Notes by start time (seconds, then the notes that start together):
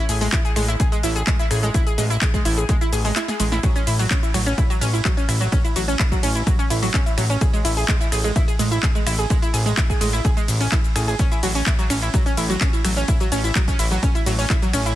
0.09 A1 G#4 G#5, open hi-hat, shaker
0.21 G#3 G#4, open hi-hat, shaker
0.32 E4 E5, kick, clap, closed hi-hat, shaker
0.45 G#4 G#5, closed hi-hat, shaker
0.56 A1 G#3 G#4, finger snap, open hi-hat, shaker
0.68 E4 E5, closed hi-hat, shaker
0.80 G#4 G#5, kick, closed hi-hat, shaker
0.92 G#3 G#4, closed hi-hat, shaker
1.03 A1 E4 E5, open hi-hat, shaker
1.16 G#4 G#5, closed hi-hat, shaker
1.27 G#3 G#4, kick, clap, closed hi-hat, shaker
1.39 E4 E5, closed hi-hat, shaker
1.51 A1 G#4 G#5, finger snap, open hi-hat, shaker
1.63 G#3 G#4, closed hi-hat, shaker
1.74 E4 E5, kick, closed hi-hat, shaker
1.87 G#4 G#5, closed hi-hat, shaker
1.98 A1 G#3 G#4, open hi-hat, shaker
2.10 E4 E5, closed hi-hat, shaker
2.21 G#4 G#5, kick, clap, closed hi-hat, shaker
2.34 G#3 G#4, kick, closed hi-hat, shaker
2.45 A1 E4 E5, open hi-hat, shaker
2.58 G#4 G#5, closed hi-hat, shaker
2.69 G#3 G#4, kick, closed hi-hat, shaker
2.81 E4 E5, closed hi-hat, shaker
2.93 A1 G#4 G#5, open hi-hat, shaker
3.05 G#3 G#4, open hi-hat, shaker
3.16 E4 E5, snare, clap, closed hi-hat, shaker
3.28 G#4 G#5, snare, closed hi-hat, shaker
3.40 A1 G#3 G#4, open hi-hat, shaker
3.52 E4 E5, snare, closed hi-hat, shaker
3.63 F#3 F#4, kick, closed hi-hat, ride, shaker
3.76 C#4 C#5, closed hi-hat, shaker
3.87 A1 E4 E5, open hi-hat, ride, shaker
3.99 F#3 F#4, open hi-hat, shaker
4.11 C#4 C#5, kick, clap, closed hi-hat, shaker
4.23 E4 E5, closed hi-hat, shaker
4.34 A1 F#3 F#4, finger snap, open hi-hat, ride, shaker
4.46 C#4 C#5, closed hi-hat, shaker
4.58 E4 E5, kick, closed hi-hat, ride, shaker
4.70 F#3 F#4, closed hi-hat, shaker
4.81 A1 C#4 C#5, open hi-hat, ride, shaker
4.93 E4 E5, closed hi-hat, shaker
5.05 F#3 F#4, kick, clap, closed hi-hat, ride, shaker
5.17 C#4 C#5, closed hi-hat, shaker
5.29 A1 E4 E5, finger snap, open hi-hat, ride, shaker
5.41 F#3 F#4, closed hi-hat, shaker
5.52 C#4 C#5, kick, closed hi-hat, ride, shaker
5.64 E4 E5, closed hi-hat, shaker
5.76 A1 F#3 F#4, open hi-hat, ride, shaker
5.88 C#4 C#5, closed hi-hat, shaker
5.99 E4 E5, kick, clap, closed hi-hat, shaker
6.12 F#3 F#4, kick, closed hi-hat, shaker
6.23 A1 C#4 C#5, open hi-hat, ride, shaker
6.35 E4 E5, closed hi-hat, shaker
6.47 F#3 F#4, kick, closed hi-hat, ride, shaker
6.59 C#4 C#5, closed hi-hat, shaker
6.70 A1 E4 E5, open hi-hat, ride, shaker
6.83 F#3 F#4, open hi-hat, shaker
6.94 C#4 C#5, kick, clap, closed hi-hat, shaker
7.06 E4 E5, closed hi-hat, shaker
7.18 A1 F#3 F#4, finger snap, open hi-hat, ride, shaker
7.30 C#4 C#5, closed hi-hat, shaker
7.41 G#4 G#5, kick, closed hi-hat, ride, shaker
7.53 G#3 G#4, closed hi-hat, shaker
7.65 A1 E4 E5, open hi-hat, ride, shaker
7.77 G#4 G#5, open hi-hat, shaker
7.88 G#3 G#4, kick, clap, closed hi-hat, ride, shaker
8.01 E4 E5, closed hi-hat, shaker
8.12 A1 G#4 G#5, finger snap, open hi-hat, ride, shaker
8.24 G#3 G#4, closed hi-hat, shaker
8.36 E4 E5, kick, closed hi-hat, ride, shaker
8.48 G#4 G#5, closed hi-hat, shaker
8.59 A1 G#3 G#4, open hi-hat, ride, shaker
8.72 E4 E5, closed hi-hat, shaker
8.83 G#4 G#5, kick, clap, closed hi-hat, ride, shaker
8.95 G#3 G#4, closed hi-hat, shaker
9.07 A1 E4 E5, finger snap, open hi-hat, ride, shaker
9.19 G#4 G#5, closed hi-hat, shaker
9.30 G#3 G#4, kick, closed hi-hat, ride, shaker
9.42 E4 E5, closed hi-hat, shaker
9.54 A1 G#4 G#5, open hi-hat, ride, shaker
9.66 G#3 G#4, closed hi-hat, shaker
9.77 E4 E5, kick, clap, closed hi-hat, ride, shaker
9.90 G#4 G#5, kick, closed hi-hat, shaker
10.01 A1 G#3 G#4, open hi-hat, ride, shaker
10.13 E4 E5, closed hi-hat, shaker
10.25 G#4 G#5, kick, closed hi-hat, ride, shaker
10.37 G#3 G#4, closed hi-hat, shaker
10.48 A1, open hi-hat, ride, shaker
10.61 C#4 C#5, open hi-hat, shaker
10.72 E4 E5, kick, clap, closed hi-hat, ride, shaker
10.84 closed hi-hat, shaker
10.96 A1 G#4 G#5, finger snap, open hi-hat, ride, shaker
11.08 G#4 G#5, closed hi-hat, shaker
11.19 C#4 C#5, kick, closed hi-hat, ride, shaker
11.32 E4 E5, closed hi-hat, shaker
11.43 A1 F#3 F#4, open hi-hat, ride, shaker
11.55 C#4 C#5, open hi-hat, shaker
11.66 E4 E5, kick, clap, closed hi-hat, ride, shaker
11.79 F#3 F#4, closed hi-hat, shaker
11.90 A1 C#4 C#5, finger snap, open hi-hat, ride, shaker
12.02 E4 E5, closed hi-hat, shaker
12.14 F#3 F#4, kick, closed hi-hat, ride, shaker
12.26 C#4 C#5, closed hi-hat, shaker
12.37 A1 E4 E5, open hi-hat, ride, shaker
12.50 F#3 F#4, closed hi-hat, shaker
12.61 C#4 C#5, kick, clap, closed hi-hat, shaker
12.73 E4 E5, closed hi-hat, shaker
12.84 A1 F#3 F#4, finger snap, open hi-hat, ride, shaker
12.97 C#4 C#5, closed hi-hat, shaker
13.08 E4 E5, kick, closed hi-hat, ride, shaker
13.20 F#3 F#4, closed hi-hat, shaker
13.32 A1 C#4 C#5, open hi-hat, ride, shaker
13.44 E4 E5, closed hi-hat, shaker
13.55 F#3, kick, clap, closed hi-hat, ride, shaker
13.68 C#4 C#5, kick, closed hi-hat, shaker
13.79 A1 E4 E5, open hi-hat, ride, shaker
13.91 F#3 F#4, closed hi-hat, shaker
14.03 C#4 C#5, kick, closed hi-hat, ride, shaker
14.15 E4 E5, closed hi-hat, shaker
14.26 A1 F#3 F#4, open hi-hat, ride, shaker
14.39 C#4 C#5, open hi-hat, shaker
14.50 E4 E5, kick, clap, closed hi-hat, ride, shaker
14.62 F#3 F#4, closed hi-hat, shaker
14.73 A1 C#4 C#5, finger snap, open hi-hat, ride, shaker
14.86 E4 E5, closed hi-hat, shaker